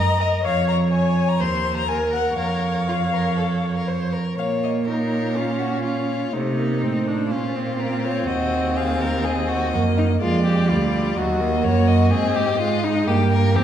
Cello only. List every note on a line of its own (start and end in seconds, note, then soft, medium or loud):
0.00 0.36 F#2 medium
0.44 1.42 F2 soft
1.40 2.37 D#2 soft
2.38 4.14 F2 soft
4.38 6.29 A#2 soft
6.34 6.84 C3 soft
6.83 7.33 A2 soft
7.32 8.28 A#2 soft
8.28 9.75 D#2 medium
9.74 10.20 F#2 soft
10.21 10.71 F2 soft
10.69 11.16 D2 soft
11.16 11.65 D#2 medium
11.63 12.13 F#2 medium
12.11 13.07 G#2 medium
13.08 13.57 G2 medium
13.56 13.64 E2 medium